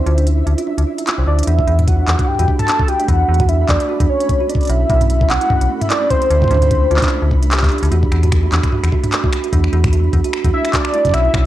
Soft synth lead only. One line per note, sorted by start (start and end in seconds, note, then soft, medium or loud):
0.00 0.27 C5 medium
1.27 1.46 D5 loud
1.47 1.89 E5 loud
1.88 2.29 F#5 loud
2.28 2.59 G5 loud
2.59 2.90 A5 loud
2.88 3.10 G5 loud
3.08 3.50 F#5 loud
3.49 3.63 E5 loud
3.63 3.70 E5 medium
3.69 4.09 D5 loud
4.09 4.51 C#5 loud
4.49 4.71 D5 medium
4.70 5.31 E5 loud
5.30 5.83 F#5 loud
5.81 5.90 E5 medium
5.90 6.09 D5 medium
6.10 7.67 C5 medium
10.54 10.75 E5 loud
10.74 11.15 D5 loud
11.14 11.46 E5 loud